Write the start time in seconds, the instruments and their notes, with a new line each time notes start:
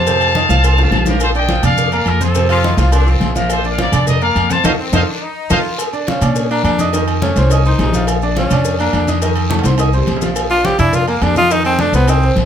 Already playing: upright bass F2, trumpet section F5 A5
0.06 upright piano C3 C4 C5, cowbell, high conga, low agogo, long guiro, maracas
0.21 cowbell, high conga, low agogo, maracas
0.35 upright piano D#3 D#4 D#5, cowbell, high conga, short guiro, maracas
0.49 upright bass C2, upright piano F3 F4 F5, cowbell, high conga, low agogo, short guiro, maracas
0.63 upright piano C4 C5 C6, cowbell, low agogo, long guiro, maracas
0.78 upright piano F3 F4 F5, high bongo, high conga, maracas
0.91 upright bass A#1, cowbell, low bongo, high conga, low timbale, low agogo, short guiro, maracas
1.06 upright piano F3 F4 F5, trumpet section G4 A#4, low bongo, high conga, short guiro, maracas
1.20 trumpet section F4 C5, cowbell, high conga, low agogo, long guiro, maracas
1.35 upright piano D4 D5 D6, trumpet section D#5 G5, high conga, maracas
1.49 upright piano F3 F4 F5, cowbell, high conga, low agogo, short guiro, maracas
1.63 upright bass F2, upright piano D4 D5 D6, trumpet section D5 F5, high conga, low conga, low agogo, short guiro, maracas
1.77 cowbell, high conga, low conga, long guiro, maracas
1.92 upright piano A#3 A#4 A#5, trumpet section D5 F5, high conga, low agogo, maracas
2.06 upright bass F2, trumpet section F4 A#4, cowbell, high conga, low agogo, short guiro, maracas
2.21 upright piano C4 C5 C6, trumpet section F4 A4, cowbell, high conga, short guiro, maracas
2.35 upright piano C3 C4 C5, cowbell, high conga, low agogo, long guiro, maracas
2.49 saxophone section F4, cowbell, high conga, low agogo, maracas
2.63 upright piano D#3 D#4 D#5, cowbell, high conga, short guiro, maracas
2.77 upright bass C2, upright piano F3 F4 F5, saxophone section F4, cowbell, high conga, low agogo, short guiro, maracas
2.91 upright piano C4 C5 C6, saxophone section D4, cowbell, high conga, low agogo, maracas
3.06 upright piano F3 F4 F5, saxophone section C4, high conga, maracas
3.20 upright bass A#1, cowbell, high conga, low agogo, short guiro, maracas
3.35 upright piano F3 F4 F5, trumpet section G4 A#4, high conga, short guiro, maracas
3.49 trumpet section F4 C5, cowbell, high conga, low agogo, long guiro, maracas
3.64 upright piano D4 D5 D6, high conga, maracas
3.71 trumpet section D5 F5
3.78 upright piano F3 F4 F5, trumpet section A#4 D5, cowbell, high conga, low agogo, short guiro, maracas
3.92 upright bass F2, upright piano D4 D5 D6, high conga, low conga, low agogo, short guiro, maracas
4.07 trumpet section A#4 D#5, cowbell, high conga, low conga, long guiro, maracas
4.21 upright piano A#3 A#4 A#5, trumpet section D5 F5, high conga, low agogo, maracas
4.36 upright bass F2, cowbell, high conga, low agogo, short guiro, maracas
4.50 upright piano C4 C5 C6, trumpet section F5 A5, cowbell, high conga, short guiro, maracas
4.63 upright bass F2, upright piano D#4 F4 A4, trumpet section C5 D#5 F5, cowbell, high conga, high timbale, long guiro, maracas
4.79 saxophone section C4
4.92 upright bass F2, upright piano D#4 F4 A4, trumpet section C5 D#5 F5, cowbell, high conga, high timbale, long guiro, maracas
5.07 saxophone section D4
5.22 saxophone section D#4
5.50 upright bass F2, upright piano D#4 F4 A4, saxophone section F4, trumpet section C5 D#5 F5, cowbell, high conga, high timbale, long guiro, maracas
5.78 cowbell, high conga, low agogo, long guiro, maracas
5.93 upright piano D4 D5 D6, high conga, maracas
6.07 upright piano F3 F4 F5, tenor saxophone C#4, cowbell, high conga, low agogo, short guiro, maracas
6.21 upright bass A#2, upright piano D4 D5 D6, high conga, low conga, low agogo, short guiro, maracas
6.35 cowbell, high conga, long guiro, maracas
6.50 upright piano A#3 A#4 A#5, tenor saxophone D4, high conga, low agogo, maracas
6.63 upright bass F2, tenor saxophone D4, cowbell, high conga, low agogo, short guiro, maracas
6.78 upright piano D#4 D#5 D#6, cowbell, high conga, short guiro, maracas
6.93 upright piano D#3 D#4 D#5, cowbell, high conga, low agogo, long guiro, maracas
7.08 cowbell, high conga, low agogo, maracas
7.22 upright piano A3 A4 A5, tenor saxophone C#4, cowbell, high conga, short guiro, maracas
7.36 upright bass C2, upright piano C4 C5 C6, cowbell, high conga, low agogo, short guiro, maracas
7.50 upright piano D#4 D#5 D#6, cowbell, high conga, low agogo, long guiro, maracas
7.65 upright piano C4 C5 C6, tenor saxophone D#4, high conga, maracas
7.79 upright bass A#1, tenor saxophone D#4, cowbell, high conga, low timbale, low agogo, short guiro, maracas
7.93 upright piano F3 F4 F5, high conga, short guiro, maracas
8.07 cowbell, high conga, low agogo, long guiro, maracas
8.22 upright piano D4 D5 D6, high conga, maracas
8.36 upright piano F3 F4 F5, tenor saxophone C#4, cowbell, high conga, low agogo, short guiro, maracas
8.50 upright bass F2, upright piano D4 D5 D6, high conga, low conga, low agogo, short guiro, maracas
8.65 cowbell, high conga, long guiro, maracas
8.79 upright piano A#3 A#4 A#5, tenor saxophone D4, high conga, low agogo, maracas
8.93 upright bass F2, tenor saxophone D4, cowbell, high conga, low agogo, short guiro, maracas
9.07 upright piano D#4 D#5 D#6, cowbell, high conga, short guiro, maracas
9.22 upright piano D#3 D#4 D#5, cowbell, high conga, low agogo, long guiro, maracas
9.36 cowbell, high conga, low agogo, maracas
9.50 upright piano A3 A4 A5, cowbell, high conga, high timbale, short guiro, maracas
9.59 high timbale
9.64 upright bass C2, upright piano C4 C5 C6, cowbell, high conga, low agogo, short guiro, maracas
9.68 high timbale
9.78 upright piano D#4 D#5 D#6, cowbell, high conga, high timbale, low agogo, long guiro, maracas
9.93 upright piano C4 C5 C6, high conga, maracas
9.97 low timbale
10.06 upright bass A#1, cowbell, high conga, low agogo, short guiro, maracas
10.16 low timbale
10.21 upright piano F3 F4 F5, high conga, short guiro, maracas
10.26 low timbale
10.35 cowbell, high conga, low agogo, long guiro, maracas
10.50 upright piano D4 D5 D6, tenor saxophone F4, high conga, maracas
10.64 upright piano F3 F4 F5, tenor saxophone G4, cowbell, high conga, low agogo, short guiro, maracas
10.78 upright bass F2, upright piano D4 D5 D6, tenor saxophone E4, high conga, low conga, low agogo, short guiro, maracas
10.93 tenor saxophone F4, cowbell, high conga, low conga, long guiro, maracas
11.08 upright piano A#3 A#4 A#5, tenor saxophone A#3, low agogo, maracas
11.21 upright bass F2, tenor saxophone D4, cowbell, high conga, low timbale, low agogo, short guiro, maracas
11.36 upright piano D#4 D#5 D#6, tenor saxophone F4, cowbell, high conga, short guiro, maracas
11.50 upright piano D#3 D#4 D#5, tenor saxophone D#4, cowbell, high conga, low agogo, long guiro, maracas
11.65 tenor saxophone C4, cowbell, high conga, low agogo, maracas
11.79 upright piano A3 A4 A5, tenor saxophone D4, cowbell, high conga, short guiro, maracas
11.92 upright bass C2, tenor saxophone B3, upright piano C4 C5 C6, cowbell, high conga, low agogo, short guiro, maracas
12.08 tenor saxophone C4, upright piano D#4 D#5 D#6, cowbell, low agogo, long guiro, maracas
12.22 upright piano C4 C5 C6, high conga, maracas
12.36 upright bass A#1, cowbell, high conga, low agogo, short guiro, maracas